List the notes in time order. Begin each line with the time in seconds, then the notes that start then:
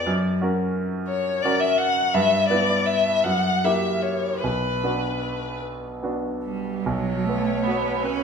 0.07 F#2
0.41 C#4 F#4 A#4
1.08 C#5
1.42 C#4 F#4 A#4 D5
1.60 E5
1.77 F#5
2.14 G2 E5
2.49 B3 E4 B4 D5
2.86 E5
3.24 F#2 F#5
3.64 A#3 E4 G4 E5
4.02 C#5
4.42 B1 B4
4.84 B3 D4 F#4
6.03 B3 D4 F#4
6.44 G3
6.85 B1 F#3 C#5
7.25 A3
7.29 B3
7.63 B3
7.67 F#4
8.03 C#4 B4